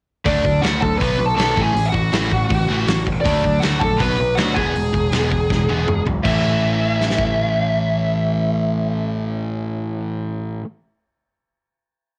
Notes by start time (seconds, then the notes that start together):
0.25 D2 D3 F#3 A3 D4 D5, kick, open hi-hat
0.43 D2 D3 F#3 A3, kick
0.61 D2 D3 F#3 A3 D4 F#4 F#5, snare, open hi-hat
0.80 D2 D3 F#3 A3 A4 A5, kick
0.97 B2 F#3 B4 B5, kick
1.01 B1 B3, open hi-hat
1.19 B1 B2 F#3
1.26 A4 A5
1.36 B1 B2 F#3 B3 A4 A5, open hi-hat
1.40 snare
1.56 A1 A2 E3 A3, kick
1.62 G#4 G#5
1.75 A1 A2 E3, open hi-hat
1.86 E5 F#5
1.92 A1 A2 E3 F#4, kick
2.12 A1 A2 E3 A3, snare, open hi-hat
2.32 A1 A2 E3, kick
2.50 A1 A2 E3, kick, open hi-hat
2.69 A1 A2 E3 A3
2.87 A1 A2 E3, snare, open hi-hat
3.07 E1 A2 E3, kick
3.21 D4 D5
3.25 D2 D3 F#3 A3, kick, open hi-hat
3.44 D2 D3 F#3 A3, kick
3.60 D2 D3 F#3 D4 F#4 F#5, snare, open hi-hat
3.64 A3
3.80 A#1 D3 F#3 A3 A4 A5, kick
3.97 B1 B2 F#3 B3 B5, kick, open hi-hat
4.01 B4
4.19 B1 B2 F#3
4.36 D2 B2 F#3 B3 F#4 F#5, snare, open hi-hat
4.54 E1 E2 B2 E3 G#3 B3 G#4 G#5, kick
4.75 E1 E2 B2 E3 G#3, open hi-hat
4.93 E1 E2 B2 E3 G#3, kick
5.12 E1 E2 B2 E3 G#3 B3, snare, open hi-hat
5.31 E1 E2 B2 E3 G#3, kick
5.50 E1 E2 B2 E3 G#3, kick, snare
5.69 E1 E2 B2 E3 G#3 B3, high tom
5.87 E1 E2 B2 E3 G#3, mid tom
6.05 B1 E2 B2 E3 G#3, floor tom
6.23 A1 A2 E3 A3 C#4 E4 E5, kick, crash
7.01 snare
7.10 snare
7.18 kick